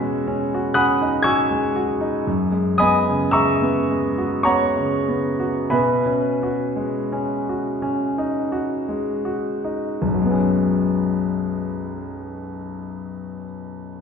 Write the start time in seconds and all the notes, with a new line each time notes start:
Already playing: B2 C#4 F#4 B5 E6 G#6 B6
0.01 G#3
0.27 C#4
0.54 F#4
0.74 C#4 F#5 B5 D#6 F#6
1.01 D#4
1.23 F#4 G#5 C#6 E6 G#6
1.50 G#3
1.76 F#4
2.01 D#4
2.27 F#2
2.52 G#3
2.78 B3 D#5 G#5 B5 D#6
3.07 C#3
3.31 G#3 E5 A#5 C#6 E6
3.62 B3
3.91 G#3
4.18 F#4
4.43 B3 C#5 F#5 A#5 C#6
4.77 C#3
5.08 B3
5.40 F#4
5.70 B2 B4 E5 G#5 B5
6.06 C#4
6.43 F#4
6.76 G#3
7.12 C#4
7.49 F#4
7.82 C#4
8.18 D#4
8.52 F#4
8.89 G#3
9.25 F#4
9.64 D#4
10.02 B1
10.07 F#2
10.14 F#3
10.20 G#3
10.25 B3
10.31 C#4